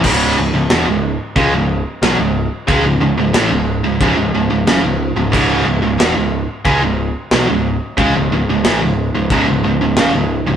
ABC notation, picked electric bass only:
X:1
M:4/4
L:1/16
Q:1/4=91
K:C#m
V:1 name="Picked electric bass" clef=bass
C,,,2 C,,, C,,, E,,, C,,,2 z C,, C,,,2 z B,,, C,,,2 z | C,, C,,, C,,, C,,, A,,, C,,,2 C,,, C,,, C,,, C,,, C,,, F,,, C,,,2 C,,, | C,,,2 C,,, C,,, E,,, C,,,2 z C,, C,,,2 z B,,, C,,,2 z | C,, C,,, C,,, C,,, A,,, C,,,2 C,,, C,,, C,,, C,,, C,,, F,,, C,,,2 C,,, |]